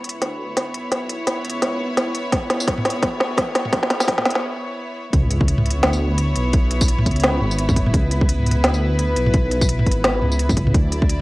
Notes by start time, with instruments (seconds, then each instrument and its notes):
Already playing: detuned saw bass C#2, string section B3 E4 C#5
0.04 closed hi-hat
0.09 closed hi-hat
0.21 detuned saw bass D2, snare, closed hi-hat
0.57 snare, closed hi-hat
0.74 detuned saw bass B1, closed hi-hat
0.92 snare, closed hi-hat
1.09 closed hi-hat
1.27 snare, closed hi-hat
1.45 detuned saw bass C#2, closed hi-hat
1.50 closed hi-hat
1.62 snare, closed hi-hat
1.80 detuned saw bass G#1
1.97 snare, closed hi-hat
2.15 closed hi-hat
2.32 detuned saw bass C#2, kick, snare, closed hi-hat
2.50 snare, closed hi-hat
2.60 tambourine
2.67 kick, snare, closed hi-hat
2.78 mid tom
2.85 snare, closed hi-hat
2.90 closed hi-hat
3.02 detuned saw bass D2, kick, snare, closed hi-hat
3.20 snare
3.37 kick, snare, closed hi-hat
3.55 detuned saw bass B1, snare, closed hi-hat
3.65 mid tom
3.73 kick, snare, closed hi-hat
3.83 snare
3.90 snare, closed hi-hat
4.00 snare, tambourine
4.08 kick, snare, closed hi-hat
4.18 snare, mid tom
4.25 snare, closed hi-hat
4.30 closed hi-hat
4.35 snare
5.13 detuned saw bass C#2, string section B3 E4 C#5, kick, closed hi-hat, sub drop
5.31 closed hi-hat
5.41 kick
5.48 closed hi-hat
5.58 mid tom
5.66 closed hi-hat
5.71 closed hi-hat
5.83 detuned saw bass D2, snare, closed hi-hat
5.93 tambourine
6.18 closed hi-hat
6.36 detuned saw bass B1, closed hi-hat
6.53 kick, closed hi-hat
6.71 closed hi-hat
6.81 kick, tambourine
6.88 closed hi-hat
6.98 mid tom
7.06 detuned saw bass C#2, kick, closed hi-hat
7.11 closed hi-hat
7.16 closed hi-hat
7.20 snare, closed hi-hat
7.24 closed hi-hat
7.41 detuned saw bass G#1, mid tom
7.51 tambourine
7.59 closed hi-hat
7.69 kick, mid tom, tambourine
7.76 kick, closed hi-hat
7.86 mid tom
7.94 detuned saw bass C#2, string section B4, kick, closed hi-hat
8.11 closed hi-hat
8.21 kick
8.29 closed hi-hat
8.39 mid tom
8.43 closed hi-hat, mid tom
8.47 mid tom
8.51 closed hi-hat, mid tom
8.64 detuned saw bass D2, snare, closed hi-hat
8.74 tambourine
8.99 closed hi-hat
9.16 detuned saw bass B1, closed hi-hat
9.27 mid tom
9.34 kick, closed hi-hat
9.51 closed hi-hat
9.61 kick, tambourine
9.69 closed hi-hat
9.79 mid tom
9.87 detuned saw bass G#1, kick, closed hi-hat
9.92 closed hi-hat
10.04 snare, closed hi-hat
10.22 detuned saw bass C#2, mid tom
10.32 tambourine
10.39 closed hi-hat
10.49 kick, mid tom, tambourine
10.57 kick, closed hi-hat
10.67 mid tom
10.74 detuned saw bass D2, string section F#3 E4 D5, kick, closed hi-hat
10.92 closed hi-hat
11.02 kick
11.09 closed hi-hat